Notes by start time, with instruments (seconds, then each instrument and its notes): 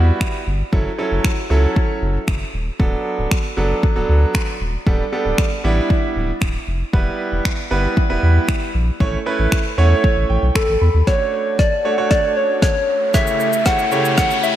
Already playing: sub bass E2, grand piano G3 B3 E4 F#4
0.21 finger snap, kick
0.47 sub bass G1
0.72 sub bass F#1, grand piano F#3 C#4 E4 A4, kick
0.98 grand piano F#3 C#4 E4 A4
1.12 sub bass F#1
1.24 finger snap, kick
1.50 sub bass C#2, grand piano F#3 C#4 E4 A4
1.76 kick
2.02 sub bass F#1
2.28 sub bass F#1, finger snap, kick
2.54 sub bass D#1
2.79 sub bass D1, grand piano F#3 B3 D4 A4, kick
3.19 sub bass D1
3.31 finger snap, kick
3.57 sub bass F#1, grand piano F#3 B3 D4 A4
3.83 kick
3.96 sub bass D1, grand piano F#3 B3 D4 A4
4.09 sub bass D2
4.35 finger snap, kick
4.61 sub bass D#1
4.87 sub bass D1, grand piano G3 B3 D4 A4, kick
5.12 grand piano G3 B3 D4 A4
5.25 sub bass D1
5.38 finger snap, kick
5.64 sub bass A1, grand piano G3 B3 D4 E4
5.90 kick
6.16 sub bass D1
6.41 sub bass D1, finger snap, kick
6.67 sub bass F1
6.93 sub bass E1, grand piano G3 B3 E4 B4, kick
7.32 sub bass E1
7.45 finger snap, kick
7.71 sub bass G1, grand piano G3 B3 E4 B4
7.97 kick
8.10 sub bass E1, grand piano G3 B3 E4 B4
8.23 sub bass E2
8.48 finger snap, kick
8.74 sub bass A#1
9.00 sub bass A1, grand piano A3 C#4 E4 C#5, kick
9.26 grand piano A3 C#4 E4 B4
9.39 sub bass A1
9.52 finger snap, kick
9.78 sub bass E2, grand piano A3 C#4 E4 C#5 F#5
10.04 grand piano E5, kick
10.17 sub bass A1
10.30 sub bass A1, grand piano G5
10.42 sub bass B1
10.55 soft synth lead A4, grand piano A5, finger snap, kick
10.68 sub bass A1
10.81 sub bass E2, grand piano B5
10.94 sub bass D#2
11.07 grand piano A3 D4 F#4 C#5, analog synth pad A3 D4 F#4 A4, soft synth lead C#5, kick, snare, riser
11.59 soft synth lead D5, kick, snare
11.85 grand piano A3 D4 F#4 C#5
11.97 grand piano A3 D4 F#4 C#5
12.11 soft synth lead D5, kick, snare
12.37 soft synth lead C#5
12.62 soft synth lead C#5, kick, snare
13.14 grand piano C#3 A3 E4 G4 C#5, analog synth pad C#3 E4 G4 E5, soft synth lead E5, kick, snare, shaker
13.27 shaker
13.40 shaker
13.53 shaker
13.66 grand piano C#3 A3 E4 G4 C#5, soft synth lead F#5, kick, snare, shaker
13.79 shaker
13.92 grand piano C#3 A3 E4 G4 C#5, shaker
14.05 shaker
14.18 soft synth lead F#5, kick, snare, shaker
14.31 shaker
14.43 soft synth lead E5, shaker